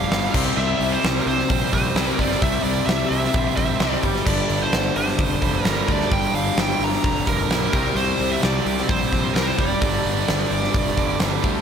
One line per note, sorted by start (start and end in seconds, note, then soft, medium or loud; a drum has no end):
0.00 0.32 G2 medium
0.00 0.32 D3 loud
0.00 0.13 G3 loud
0.00 0.30 G3 medium
0.00 0.34 G3 loud
0.00 0.30 D4 medium
0.00 0.32 G4 medium
0.00 0.30 F5 medium
0.10 0.26 G1 medium
0.10 0.32 G2 medium
0.10 0.33 D3 loud
0.10 0.34 G3 medium
0.10 snare loud
0.10 open hi-hat medium
0.33 0.50 C2 medium
0.33 1.48 C3 loud
0.33 1.50 G3 loud
0.33 4.23 C4 medium
0.33 1.52 C4 loud
0.33 4.23 G4 medium
0.33 4.23 D5 medium
0.33 kick loud
0.33 crash loud
0.57 0.73 C2 loud
0.57 0.93 E5 loud
0.80 0.96 C2 loud
0.80 open hi-hat medium
0.92 1.18 C5 medium
1.04 1.19 C2 loud
1.04 snare loud
1.04 open hi-hat medium
1.20 1.27 A#4 medium
1.26 1.42 C2 medium
1.26 1.73 C5 loud
1.26 open hi-hat medium
1.40 snare soft
1.48 1.65 A#1 loud
1.48 1.71 C3 medium
1.48 1.74 G3 medium
1.48 1.71 C4 medium
1.48 kick loud
1.48 open hi-hat loud
1.72 1.89 A#1 medium
1.72 2.17 C3 medium
1.72 2.20 G3 medium
1.72 2.17 C4 medium
1.72 2.21 C5 loud
1.72 kick medium
1.72 open hi-hat medium
1.95 2.11 C2 medium
1.95 2.16 C3 medium
1.95 2.19 G3 loud
1.95 2.18 C4 loud
1.95 snare loud
1.95 open hi-hat medium
2.18 2.34 G1 loud
2.18 3.31 C3 loud
2.18 3.34 G3 loud
2.18 3.34 C4 loud
2.18 2.42 D5 medium
2.18 kick medium
2.18 open hi-hat medium
2.31 snare soft
2.42 2.58 C2 loud
2.42 2.63 E5 loud
2.42 kick loud
2.42 open hi-hat loud
2.63 2.80 C2 medium
2.63 2.86 D5 loud
2.63 open hi-hat medium
2.86 3.03 C2 loud
2.86 3.08 E5 medium
2.86 snare loud
2.86 open hi-hat medium
3.10 3.27 C2 medium
3.10 3.55 E5 loud
3.10 open hi-hat medium
3.24 snare soft
3.32 3.50 A#1 medium
3.32 3.55 C3 medium
3.32 3.58 G3 medium
3.32 3.55 C4 medium
3.32 kick loud
3.32 open hi-hat medium
3.56 3.73 A#1 medium
3.56 4.03 C3 medium
3.56 4.28 G3 medium
3.56 4.01 C4 medium
3.56 4.00 E5 medium
3.56 kick medium
3.56 open hi-hat medium
3.80 3.96 C2 medium
3.80 4.02 C3 medium
3.80 4.28 G3 medium
3.80 4.03 C4 medium
3.80 snare loud
3.80 open hi-hat medium
4.02 4.19 G1 medium
4.02 kick medium
4.02 open hi-hat medium
4.16 snare soft
4.25 4.42 G1 loud
4.25 5.40 G2 medium
4.25 5.41 D3 medium
4.25 7.70 G3 medium
4.25 5.41 G3 loud
4.25 7.70 D4 medium
4.25 6.10 A4 medium
4.25 4.62 D5 loud
4.25 kick loud
4.25 crash loud
4.50 4.66 G1 loud
4.50 open hi-hat medium
4.62 4.96 C5 medium
4.73 4.89 G1 loud
4.73 snare loud
4.73 open hi-hat medium
4.96 5.12 G1 loud
4.96 5.64 C5 loud
4.96 open hi-hat medium
5.08 snare soft
5.19 5.34 F1 medium
5.19 kick loud
5.19 open hi-hat medium
5.42 5.58 F1 medium
5.42 5.63 G2 medium
5.42 5.65 D3 medium
5.42 5.68 G3 medium
5.42 kick medium
5.42 open hi-hat medium
5.64 5.81 G1 medium
5.64 6.09 G2 medium
5.64 6.11 D3 medium
5.64 6.13 G3 medium
5.64 5.92 A#4 loud
5.64 snare loud
5.64 open hi-hat medium
5.87 6.04 D2 medium
5.87 6.10 G2 medium
5.87 6.10 D3 medium
5.87 6.13 G3 loud
5.87 kick medium
5.87 open hi-hat medium
5.92 6.12 D5 medium
6.01 snare soft
6.10 6.27 G1 loud
6.10 7.25 G2 medium
6.10 7.26 D3 loud
6.10 7.26 G3 loud
6.10 9.78 G4 medium
6.10 6.35 G5 loud
6.10 kick loud
6.10 open hi-hat medium
6.34 6.50 G1 loud
6.34 6.59 F5 loud
6.34 open hi-hat medium
6.56 6.72 G1 loud
6.56 snare loud
6.56 open hi-hat loud
6.60 6.83 G5 loud
6.79 6.96 G1 medium
6.79 open hi-hat medium
6.84 7.30 A#5 loud
6.93 snare soft
7.04 7.20 F1 medium
7.04 kick loud
7.04 open hi-hat medium
7.26 7.43 F1 medium
7.26 7.48 G2 medium
7.26 7.49 D3 medium
7.26 7.52 G3 medium
7.26 7.72 A#4 loud
7.26 kick medium
7.26 open hi-hat medium
7.49 7.65 B1 medium
7.49 7.72 G2 medium
7.49 7.72 D3 medium
7.49 7.74 G3 medium
7.49 snare loud
7.49 open hi-hat medium
7.72 7.89 C2 medium
7.72 8.87 C3 loud
7.72 8.90 G3 loud
7.72 9.79 C4 medium
7.72 8.89 C4 loud
7.72 7.95 A#4 medium
7.72 9.79 D5 medium
7.72 kick loud
7.72 open hi-hat medium
7.95 8.11 C2 loud
7.95 8.32 C5 loud
7.95 open hi-hat loud
8.19 8.35 C2 loud
8.19 open hi-hat medium
8.32 8.41 E5 medium
8.41 8.59 C2 loud
8.41 8.90 D5 loud
8.41 snare loud
8.41 open hi-hat medium
8.66 8.81 C2 loud
8.66 open hi-hat medium
8.78 snare soft
8.89 9.05 A#1 medium
8.89 9.10 C3 loud
8.89 9.13 G3 medium
8.89 9.10 C4 medium
8.89 9.34 C5 medium
8.89 kick loud
8.89 open hi-hat medium
9.12 9.28 A#1 medium
9.12 9.58 C3 medium
9.12 9.83 G3 medium
9.12 9.57 C4 medium
9.12 kick medium
9.12 open hi-hat medium
9.34 9.51 C2 loud
9.34 9.57 C3 medium
9.34 9.83 G3 medium
9.34 9.58 C4 medium
9.34 9.48 A#4 medium
9.34 snare loud
9.34 open hi-hat medium
9.48 9.59 C5 medium
9.58 9.74 F1 medium
9.58 11.17 D5 medium
9.58 kick loud
9.58 open hi-hat medium
9.79 9.97 G1 medium
9.79 10.95 G2 medium
9.79 10.96 D3 loud
9.79 11.61 G3 medium
9.79 11.61 D4 medium
9.79 11.61 A4 medium
9.79 kick loud
9.79 open hi-hat loud
9.83 10.95 G3 loud
10.05 10.21 G1 medium
10.05 open hi-hat medium
10.28 10.44 G1 loud
10.28 snare loud
10.28 open hi-hat loud
10.51 10.67 G1 loud
10.51 open hi-hat medium
10.64 snare soft
10.74 10.90 F1 medium
10.74 kick loud
10.74 open hi-hat medium
10.96 11.13 F1 medium
10.96 11.19 G2 medium
10.96 11.20 D3 medium
10.96 11.19 G3 medium
10.96 kick medium
10.96 open hi-hat medium
11.20 11.37 G1 medium
11.20 11.61 G2 medium
11.20 11.61 D3 medium
11.20 11.61 G3 medium
11.20 snare loud
11.20 open hi-hat medium
11.43 11.60 D2 medium
11.43 11.61 G2 medium
11.43 11.61 D3 medium
11.43 11.61 G3 medium
11.43 kick loud
11.43 open hi-hat medium